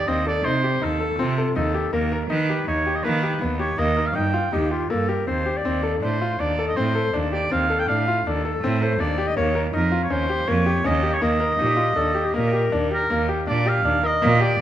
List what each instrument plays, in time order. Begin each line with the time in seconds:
0.07 cello D#2, grand piano C4, oboe D#5
0.26 grand piano A4, oboe D5
0.45 cello C3, grand piano D#4, oboe C5
0.64 grand piano G4
0.82 cello D#2, grand piano D#4, oboe A4
1.00 grand piano A4
1.18 cello C3, grand piano C4, clarinet F4
1.38 grand piano A4
1.55 cello D#2, grand piano D#4, clarinet A4
1.74 grand piano G4
1.92 cello D#2, grand piano A#3, clarinet A#4
2.12 grand piano A#4
2.29 cello D#3, grand piano D#4, oboe B4
2.49 grand piano G4
2.67 cello D#2, grand piano D#4, oboe C#5
2.86 grand piano G4
2.95 oboe D#5
3.03 cello D#3, grand piano A#3, oboe B4
3.23 grand piano G4
3.41 cello D#2, grand piano B3
3.60 grand piano G4, oboe C#5
3.78 cello D#2, grand piano A#3, oboe D#5
3.97 grand piano A#4
4.06 oboe F5
4.15 cello G2, grand piano D#4, oboe G5
4.34 grand piano F4
4.52 cello D#2, grand piano D#4, clarinet G4
4.71 clarinet F4, grand piano G4
4.90 cello G2, grand piano A#3, clarinet A4
5.09 grand piano G4, clarinet A#4
5.27 cello D#2, grand piano C4, clarinet C5
5.46 grand piano G4
5.57 clarinet D5
5.65 cello D#2, grand piano C4
5.83 grand piano A4
6.02 cello A2, grand piano D4, oboe C5
6.21 grand piano F4
6.40 cello D#2, grand piano D4, oboe D5
6.59 grand piano A4
6.67 oboe D#5
6.76 cello A2, grand piano C4, oboe C5
6.95 grand piano A4
7.13 cello D#2, grand piano D4
7.32 grand piano G4, oboe D5
7.51 cello D#2, grand piano C4, oboe F5
7.70 grand piano A4
7.79 oboe G5
7.88 cello A2, grand piano D4, oboe F5
8.08 grand piano F4
8.26 cello D#2, grand piano D4, clarinet A4
8.45 grand piano A4
8.63 cello A2, grand piano C4
8.82 grand piano A4, clarinet C5
9.00 cello D#2, grand piano D4, clarinet D5
9.18 grand piano G4
9.27 clarinet D#5
9.37 cello D#2, grand piano A#3, clarinet C#5
9.55 grand piano A#4
9.73 cello F2, grand piano D#4, oboe A#4
9.92 grand piano F4
10.03 oboe C#5
10.10 cello D#2, grand piano C#4, oboe C5
10.30 grand piano G4
10.47 cello F2, grand piano A#3, oboe C#5
10.66 grand piano G4
10.84 cello D#2, grand piano C#4, oboe D#5
11.03 grand piano G4
11.13 oboe C#5
11.21 cello D#2, grand piano A#3, oboe D#5
11.40 grand piano A#4
11.59 cello A#2, grand piano D#4, clarinet G4
11.77 grand piano F4
11.96 cello D#2, grand piano D4, clarinet A4
12.15 grand piano G4
12.25 clarinet G4
12.34 cello A#2, grand piano A#3, clarinet A#4
12.53 grand piano G4
12.72 cello D#2, grand piano D4
12.91 grand piano G4, oboe A#4
13.10 cello D#2, grand piano A#3
13.29 grand piano G4
13.47 cello A#2, grand piano D4, oboe D5
13.66 grand piano G4, oboe F5
13.85 cello D#2, grand piano D4
14.03 grand piano A#4, oboe D#5
14.22 cello A#2, grand piano A#3
14.41 grand piano G4, oboe D5